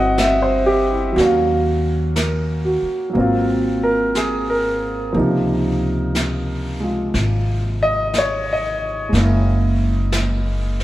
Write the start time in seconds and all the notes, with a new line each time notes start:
Already playing: G1 F#3 B3 C4 D4 E4 F#4 D#5 F#5
0.18 E5, brush sweep, snare, hi-hat pedal
0.42 C5
0.66 G4
0.91 E4
1.12 D#2 F#3 A#3
1.17 C#4 F#4, brush sweep, snare
1.23 F5
2.16 A#4, brush sweep, snare, hi-hat pedal
2.65 F#4
2.82 muted upright bass stroke
3.10 F#3 A#3
3.15 G#1 C4, brush sweep
3.21 F4
3.83 A#4
4.15 G#4, brush sweep, snare, hi-hat pedal
4.50 A#4
5.13 C#2 C3 F3 A#3, brush sweep
5.17 D#4
6.15 brush sweep, snare, hi-hat pedal
6.80 G#3 F4
7.14 G#1, brush sweep, snare
7.83 D#5
8.14 brush sweep, snare, hi-hat pedal
8.18 C#5
8.53 D#5
9.09 F#1 G#3
9.13 A#3 C#4, brush sweep, snare
9.20 E4
10.12 brush sweep, snare, hi-hat pedal
10.80 snare